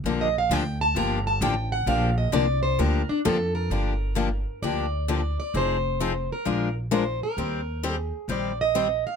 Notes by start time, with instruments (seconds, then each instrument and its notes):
0.04 upright bass A#1, steel-string acoustic guitar D3 F3 A#3 D4 G4
0.21 steel-string acoustic guitar D#5
0.38 steel-string acoustic guitar F5
0.49 upright bass D2, steel-string acoustic guitar D3 F3 A#3 D4 G4 G5
0.81 steel-string acoustic guitar A5
0.95 upright bass G1, steel-string acoustic guitar D3 F3 A#3 D4 G4 A#5
1.27 steel-string acoustic guitar A5
1.41 upright bass A1, steel-string acoustic guitar D3 F3 A#3 D4 G4 G5
1.72 steel-string acoustic guitar F#5
1.86 upright bass A#1, steel-string acoustic guitar D3 F3 A#3 D4 G4 F5
2.18 steel-string acoustic guitar D#5
2.32 upright bass C2, steel-string acoustic guitar D3 F3 A#3 D4 G4 D5
2.63 steel-string acoustic guitar C5
2.79 upright bass D2, steel-string acoustic guitar D3 F3 A#3 D4 G4 A#4
3.09 steel-string acoustic guitar D4, muted upright bass stroke
3.25 upright bass F2, steel-string acoustic guitar D3 F3 A#3 D4 G4 A4
3.55 steel-string acoustic guitar A#4
3.70 upright bass G1, steel-string acoustic guitar D3 F3 A#3 D4 G4
4.15 steel-string acoustic guitar D3 F3 A#3 D4 G4
4.62 upright bass D2, steel-string acoustic guitar D3 F3 A#3 D4 G4 D5
5.08 steel-string acoustic guitar D3 F3 A#3 D4 G4 D5
5.40 steel-string acoustic guitar D5
5.54 upright bass F1, steel-string acoustic guitar F3 C4 D#4 G#4 C5
6.00 steel-string acoustic guitar F3 C4 D#4 G#4
6.32 steel-string acoustic guitar A#4
6.45 upright bass A#1, steel-string acoustic guitar F3 G#3 D4 F4 A#4
6.91 steel-string acoustic guitar F3 G#3 D4 F4 A#4 C5
7.23 steel-string acoustic guitar A#4
7.37 upright bass D#2, steel-string acoustic guitar D#3 G3 C4 G4 C5
7.83 steel-string acoustic guitar D#3 G3 C4 G4 C5
7.94 steel-string acoustic guitar G#4
8.28 upright bass A#1, steel-string acoustic guitar D#3 G3 C4 G4 C5 D5
8.61 steel-string acoustic guitar D#5
8.75 steel-string acoustic guitar D#3 G3 C4 G4 C5
9.07 steel-string acoustic guitar F5